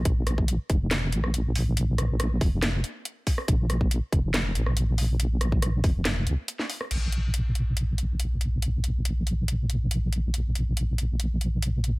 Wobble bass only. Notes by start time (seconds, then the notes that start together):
0.05 A#1
0.70 F1
1.13 A#1
2.41 F1
3.48 A#1
4.12 F1
4.55 A#1
5.84 F1
6.27 C#2
6.91 A#1